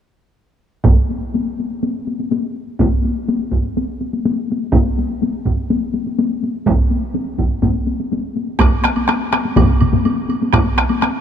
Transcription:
0.85 taiko, taiko high
0.98 taiko high
1.10 taiko high
1.22 taiko high
1.34 taiko high
1.46 taiko high
1.59 taiko high
1.71 taiko high
1.83 taiko high
1.96 taiko high
2.07 taiko high
2.19 taiko high
2.31 taiko high
2.44 taiko high
2.68 taiko high
2.80 taiko, taiko high
2.92 taiko high
3.04 taiko high
3.17 taiko high
3.29 taiko high
3.40 taiko high
3.52 taiko, taiko high
3.65 taiko high
3.77 taiko high
3.89 taiko high
4.01 taiko high
4.13 taiko high
4.25 taiko high
4.38 taiko high
4.50 taiko high
4.62 taiko high
4.73 taiko, taiko high
4.86 taiko high
4.98 taiko high
5.10 taiko high
5.22 taiko high
5.45 taiko, taiko high
5.58 taiko high
5.70 taiko high
5.83 taiko high
5.94 taiko high
6.06 taiko high
6.18 taiko high
6.30 taiko high
6.43 taiko high
6.55 taiko high
6.66 taiko, taiko high
6.78 taiko high
6.90 taiko high
7.02 taiko high
7.14 taiko high
7.27 taiko high
7.38 taiko, taiko high
7.51 taiko high
7.62 taiko, taiko high
7.75 taiko high
7.87 taiko high
8.00 taiko high
8.12 taiko high
8.24 taiko high
8.36 taiko high
8.48 taiko high
8.59 taiko rim, taiko, taiko high, high woodblock
8.61 taiko rim
8.84 taiko rim, taiko high
8.96 taiko high, high woodblock
9.08 taiko rim, taiko high, high woodblock
9.32 taiko rim, taiko high, high woodblock
9.45 taiko high
9.56 taiko, taiko low-mid, taiko mid, taiko high, high woodblock
9.81 taiko low-mid, taiko mid, taiko high, high woodblock
9.92 taiko low-mid, taiko mid, taiko high
10.05 taiko high, high woodblock
10.29 taiko high, high woodblock
10.42 taiko high
10.53 taiko rim, taiko, taiko high, high woodblock
10.78 taiko rim, taiko high
10.89 taiko high, high woodblock
11.01 taiko rim, taiko high, high woodblock

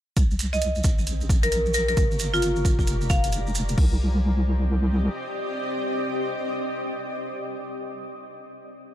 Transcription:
0.17 C2, kick, closed hi-hat, maracas
0.31 maracas
0.39 closed hi-hat, maracas
0.53 D#5, maracas
0.61 closed hi-hat, maracas
0.75 maracas
0.84 A#1, kick, maracas
0.98 maracas
1.07 closed hi-hat, maracas
1.21 maracas
1.29 kick, maracas
1.43 A#4, closed hi-hat, maracas
1.52 A#4, closed hi-hat, maracas
1.66 maracas
1.74 A#4, maracas
1.89 A#4, closed hi-hat, maracas
1.97 G1, kick, closed hi-hat, maracas
2.11 maracas
2.19 closed hi-hat, maracas
2.34 F4, maracas
2.42 closed hi-hat, maracas
2.56 maracas
2.65 kick, maracas
2.79 kick, maracas
2.87 F1, closed hi-hat, maracas
3.01 maracas
3.10 F5, kick, maracas
3.24 closed hi-hat, maracas
3.32 closed hi-hat, maracas
3.47 maracas
3.55 maracas
3.69 closed hi-hat, maracas
3.77 C2 C4, kick, crash
3.86 G4
3.93 D5
3.98 D#5

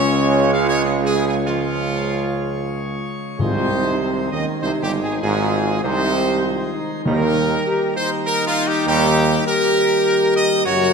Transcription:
Already playing: C#2 C#3 G#3 C#4 F4 C#5
0.53 F4 F5
0.68 C#4 C#5
0.84 G#3 G#4
1.04 G#3 G#4
1.25 G#3 G#4
1.47 F3 F4
3.39 C2 G#2 C3 D#3 G#3 D#4 F4 C5
3.71 D#4
4.01 C4
4.32 D#2 D#3 C#4 D#5
4.62 C2 C3 D#4 C5
4.82 G1 G2 G4
5.02 G#1 G#2 G#4
5.22 G#1 G#2 F4 G#4
5.84 C2 C3 D#4 C5
6.13 G4
6.44 F4
6.75 D#4
7.05 D#2 D#3 G3 A#3 A#4
7.66 G4
7.96 D#4 C5
8.26 A#4
8.47 F4
8.67 G4
8.86 D#2 D#3 G3 G4
9.47 G4 A#4
10.36 D#5
10.65 F#2 C#3 F#3 A#3 F#4 A#4 C#5

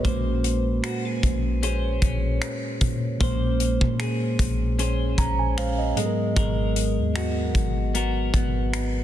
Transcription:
Already playing: B3 F#4 B4
0.02 A#1 A#2 G#3 A#3 C#4 C5, kick, closed hi-hat
0.08 C5
0.44 closed hi-hat
0.84 F#4, finger snap, closed hi-hat
1.05 G#4
1.23 A#1, kick, closed hi-hat
1.63 C#4 G#4 C5, closed hi-hat
2.02 A#1 C#4, kick, closed hi-hat
2.42 finger snap, closed hi-hat
2.81 A#2, kick, closed hi-hat
3.18 A#1 A#2 G#3 A#3 C#4 C5, kick, closed hi-hat
3.23 C5
3.60 closed hi-hat
3.81 A#2, kick
4.00 G#4, finger snap, closed hi-hat
4.39 A#1, kick, closed hi-hat
4.79 C#4 G#4 C5, closed hi-hat
5.18 A#1 C#4 A#5, kick, closed hi-hat
5.39 G#5
5.56 A#2 G#3 C#4 C5 F5, finger snap, closed hi-hat
5.78 D#5
5.94 G#2 F#3 G#3 B3 D#5, closed hi-hat
6.00 A4
6.06 A#4
6.36 G#1 G#3 A#4, kick, closed hi-hat
6.76 closed hi-hat
6.98 D#2
7.15 F#4, finger snap, closed hi-hat
7.55 G#1, kick, closed hi-hat
7.95 B3 F#4 A#4, closed hi-hat
8.34 G#1 B3, kick, closed hi-hat
8.74 finger snap, closed hi-hat

